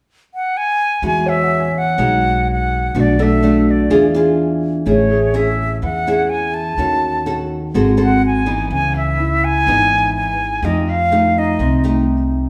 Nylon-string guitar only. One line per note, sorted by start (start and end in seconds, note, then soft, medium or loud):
1.02 1.96 E3 soft
1.02 1.67 G#3 soft
1.02 1.67 F#4 medium
1.98 2.92 B2 medium
1.98 2.90 G#3 medium
1.98 2.91 D#4 medium
1.98 2.91 F#4 medium
2.95 3.88 B2 medium
2.95 3.15 A3 soft
2.95 3.15 D4 soft
2.95 3.15 F#4 medium
3.19 3.39 A3 soft
3.19 3.39 D4 medium
3.19 3.39 F#4 medium
3.43 3.89 A3 soft
3.43 3.89 D4 medium
3.43 3.89 F#4 medium
3.90 4.84 E3 medium
3.90 4.05 D4 medium
3.90 4.04 F4 medium
3.90 4.05 G#4 medium
4.14 4.83 D4 medium
4.14 4.83 F4 medium
4.14 4.83 G#4 medium
4.86 5.80 A3 soft
4.86 5.17 C#4 soft
4.86 5.17 E4 soft
4.86 5.17 G#4 soft
5.34 5.82 C#4 soft
5.34 5.82 E4 medium
5.34 5.82 G#4 medium
5.82 6.76 E3 medium
6.07 6.75 C#4 medium
6.07 6.75 E4 medium
6.07 6.75 G#4 medium
6.78 7.72 D#3 soft
6.78 7.22 C#4 soft
6.78 7.23 F#4 medium
6.78 7.23 A4 medium
7.26 7.59 C#4 soft
7.26 7.59 F#4 medium
7.26 7.59 A4 medium
7.74 8.46 G#3 soft
7.74 7.95 C4 medium
7.74 7.95 F#4 medium
7.74 7.95 A4 medium
7.97 8.42 C4 medium
7.97 8.42 F#4 medium
7.97 8.42 A4 medium
8.46 9.14 E3 medium
8.46 9.14 B3 medium
8.46 9.15 D#4 medium
8.71 9.64 C#3 soft
9.67 10.61 G#2 medium
9.67 10.31 E3 medium
9.67 10.32 B3 medium
9.67 10.32 D#4 medium
10.63 11.56 F3 soft
10.63 10.94 A3 soft
10.63 10.94 D#4 medium
10.63 10.94 G4 soft
11.12 11.79 A3 soft
11.12 11.79 D#4 medium
11.12 11.79 G4 medium
11.60 12.49 C3 medium
11.84 12.49 A3 soft
11.84 12.49 D#4 medium
11.84 12.49 G4 medium